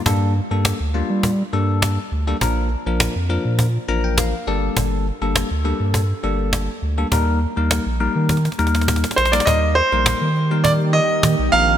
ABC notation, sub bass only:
X:1
M:4/4
L:1/16
Q:1/4=102
K:Eblyd
V:1 name="Sub bass" clef=bass
G,,3 G,,2 D,,2 G,3 G,,4 D,,2 | B,,,3 B,,,2 F,,2 B,,3 A,,,4 G,,,2 | G,,,3 G,,,2 D,,2 G,,3 G,,,4 D,,2 | E,,3 E,,2 B,,,2 E,3 E,,4 B,,,2 |
E,,3 B,,,2 E,6- E, E, =B,,, _B,,,2 |]